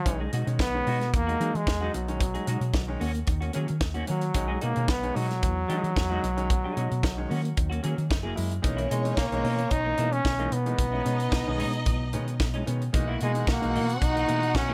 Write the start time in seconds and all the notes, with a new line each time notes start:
Already playing: F#3
0.05 B1 D#3 G#3 C#4, muted clean electric guitar stroke, kick, closed hi-hat
0.20 G#3 D#4 G#4
0.32 B2 G#3 D#4 F#4, closed hi-hat
0.47 B2 D#3 G#3 C#4, muted clean electric guitar stroke, closed hi-hat
0.59 B1 B3, kick, snare
0.74 D#3 G#3 C#4, muted clean electric guitar stroke
0.87 B2 G#3 D#4 F#4, open hi-hat
1.00 B2, muted clean electric guitar stroke, snare, closed hi-hat
1.14 E2 E3 A#3, muted clean electric guitar stroke, kick, closed hi-hat
1.27 G#3 D#4 F#4, closed hi-hat
1.40 E3 F#3 G#3 D#4 G#4, closed hi-hat
1.53 E3 G#3 D#4, muted clean electric guitar stroke, closed hi-hat
1.67 E2, muted clean electric guitar stroke, kick, snare
1.81 F#3 G#3 D#4 F#4
1.94 B1 B2 F#3, muted clean electric guitar stroke, closed hi-hat
2.08 D#3 G#3 C#4, muted clean electric guitar stroke, closed hi-hat
2.20 B2, muted clean electric guitar stroke, kick, closed hi-hat
2.34 G#3 D#4 G#4, closed hi-hat
2.47 B2 G#3 C#4 D#4 F#4, closed hi-hat
2.60 B2, muted clean electric guitar stroke, closed hi-hat
2.74 B1 B2, kick, snare
2.87 D#3 G#3 C#4, muted clean electric guitar stroke
3.00 D#2 A#3 C#4 F#4, open hi-hat
3.14 muted clean electric guitar stroke, closed hi-hat
3.26 D#2 D#3, muted clean electric guitar stroke, kick, closed hi-hat
3.41 A#3 C#4 F#4, closed hi-hat
3.53 D#3 F#3 A#3 C#4 G#4, closed hi-hat
3.68 D#3 A#3 C#4, muted clean electric guitar stroke, closed hi-hat
3.81 D#2 A#3 C#4, muted clean electric guitar stroke, kick, snare
3.94 D#3 A#3 C#4 F#4, closed hi-hat
4.07 D#3 F#3 A#3 C#4, muted clean electric guitar stroke, closed hi-hat
4.21 muted clean electric guitar stroke, closed hi-hat
4.34 B1 D#3 G#3 C#4, muted clean electric guitar stroke, kick, closed hi-hat
4.48 G#3 D#4 G#4
4.60 B2 G#3 A#3 D#4 F#4, closed hi-hat
4.75 B2 D#3 G#3 C#4, muted clean electric guitar stroke, closed hi-hat
4.88 B1 B3, kick, snare
5.02 D#3 G#3 C#4, muted clean electric guitar stroke, closed hi-hat
5.15 B2 F#3 G#3 D#4 F#4, open hi-hat
5.29 B2, muted clean electric guitar stroke, snare, closed hi-hat
5.43 E2 E3, kick, closed hi-hat
5.56 muted clean electric guitar stroke
5.68 E3 F#3 G#3 D#4 G#4, closed hi-hat
5.83 E3 G#3 D#4, muted clean electric guitar stroke, closed hi-hat
5.96 E2, muted clean electric guitar stroke, kick, snare
6.10 F#3 G#3 D#4 F#4
6.22 B1 B2, muted clean electric guitar stroke, closed hi-hat
6.37 D#3 G#3 C#4, muted clean electric guitar stroke, closed hi-hat
6.50 B2, muted clean electric guitar stroke, kick, closed hi-hat
6.64 G#3 D#4 G#4
6.76 B2 G#3 C#4 D#4 F#4, closed hi-hat
6.91 B2, muted clean electric guitar stroke, closed hi-hat
7.03 B1 B2, kick, snare
7.17 D#3 G#3 C#4, muted clean electric guitar stroke
7.30 D#3 A#3 C#4 F#4, open hi-hat
7.44 muted clean electric guitar stroke, closed hi-hat
7.57 D#2 D#3, muted clean electric guitar stroke, kick, closed hi-hat
7.70 A#3 C#4 F#4, closed hi-hat
7.83 D#3 F#3 A#3 C#4 G#4, closed hi-hat
7.97 D#3 A#3 C#4, muted clean electric guitar stroke, closed hi-hat
8.09 F#1 A#3 E4, muted clean electric guitar stroke, kick, snare
8.23 F#3 A#3 E4 G#4
8.35 F#2 G#3 A#3 E4, muted clean electric guitar stroke, open hi-hat
8.51 muted clean electric guitar stroke, closed hi-hat
8.62 B1 E3 G#3 A#3 C#4 D#4 C#5, muted clean electric guitar stroke, kick, closed hi-hat
8.77 E3 A#3 E4, closed hi-hat
8.90 B2 E3 G#3 A#3 D#4, closed hi-hat
9.04 E3 G#3 A#3 D#4, muted clean electric guitar stroke, closed hi-hat
9.17 B1 A#3, kick, snare
9.30 B1 E3 G#3 A#3 D#4, muted clean electric guitar stroke, closed hi-hat
9.42 B2 E3 A#3 D#4, open hi-hat
9.58 muted clean electric guitar stroke, closed hi-hat
9.71 B1 D#4, muted clean electric guitar stroke, kick, closed hi-hat
9.84 E3 A#3 D#4
9.98 B2 E3 G#3 A#3 D#4 E4, closed hi-hat
10.12 A#3 C#4 D#4, muted clean electric guitar stroke, closed hi-hat
10.25 B1, kick, snare
10.39 E3 G#3 A#3 D#4, closed hi-hat
10.52 B2 B3, muted clean electric guitar stroke, closed hi-hat
10.65 E3 G#3 A#3 D#4, muted clean electric guitar stroke, closed hi-hat
10.78 B1 A2 D#4 D#5, muted clean electric guitar stroke, kick, closed hi-hat
10.92 G#3 C#4 E4
11.04 B2 G#3 B3 C#4 D#4, closed hi-hat
11.20 muted clean electric guitar stroke, closed hi-hat
11.32 B1 A2, kick, snare
11.46 B1 D#3 G#3 B3 C#4, muted clean electric guitar stroke
11.58 B2 G#3 B3 C#4 D#4, open hi-hat
11.73 muted clean electric guitar stroke, closed hi-hat
11.86 B1 A2, muted clean electric guitar stroke, kick, closed hi-hat
12.00 muted clean electric guitar stroke
12.13 B2 D#3 G#3 B3 C#4, closed hi-hat
12.27 B3 C#4, muted clean electric guitar stroke, closed hi-hat
12.40 B1 B3 C#4, muted clean electric guitar stroke, kick, snare
12.54 A2 G#3 C#4 D#4, closed hi-hat
12.66 B2 D#3 G#3 B3 C#4, muted clean electric guitar stroke, closed hi-hat
12.81 muted clean electric guitar stroke, closed hi-hat
12.93 B1 E3 G#3 A#3 D#4 F#4 F#5, muted clean electric guitar stroke, kick, closed hi-hat
13.08 E3 A#3 E4
13.20 B2 E3 G#3 A#3 D#4, closed hi-hat
13.34 E3 G#3 A#3 D#4, muted clean electric guitar stroke, closed hi-hat
13.47 B1 A#3, kick, snare
13.61 B1 E3 G#3 A#3 D#4, muted clean electric guitar stroke, closed hi-hat
13.74 B2 E3 A#3 D#4, open hi-hat
13.88 muted clean electric guitar stroke, closed hi-hat
14.01 B1 D#4, muted clean electric guitar stroke, kick, closed hi-hat
14.14 E3 A#3 D#4, closed hi-hat
14.28 B2 E3 G#3 A#3 D#4 E4, closed hi-hat
14.42 A#3 D#4, muted clean electric guitar stroke, closed hi-hat
14.55 B1 C#4, kick, snare
14.68 E3 G#3 A#3 D#4